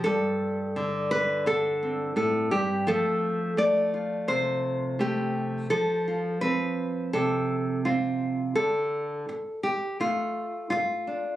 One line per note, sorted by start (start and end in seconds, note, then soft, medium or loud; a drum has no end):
0.00 0.79 C4 soft
0.00 1.10 A4 medium
0.05 2.51 G2 medium
0.76 1.45 D3 medium
1.11 1.46 B4 loud
1.46 2.16 D3 medium
1.46 2.15 A4 medium
1.83 3.61 C4 soft
2.16 2.51 A2 medium
2.16 2.51 A4 medium
2.51 2.86 G2 medium
2.51 2.86 G4 medium
2.87 5.71 F3 medium
2.87 3.57 A3 medium
2.87 3.93 A4 loud
3.57 4.99 A3 medium
3.57 4.28 D5 loud
3.94 5.00 F4 medium
4.28 5.65 C3 medium
4.28 5.70 C5 loud
4.99 5.70 A3 medium
4.99 6.06 G4 medium
5.70 8.53 F3 medium
5.70 6.41 A4 loud
6.08 7.84 F4 soft
6.41 7.85 C4 medium
6.41 7.12 B4 medium
7.13 8.53 C3 medium
7.13 7.85 A4 medium
7.85 8.53 C4 medium
7.85 8.55 F4 medium
8.55 9.28 D3 medium
8.55 9.63 A4 medium
9.29 muted nylon-string guitar stroke medium
9.63 9.99 G4 medium
10.00 11.36 A3 medium
10.00 10.69 F4 medium
10.70 11.36 F4 medium
10.70 muted nylon-string guitar stroke medium
11.07 11.36 D4 soft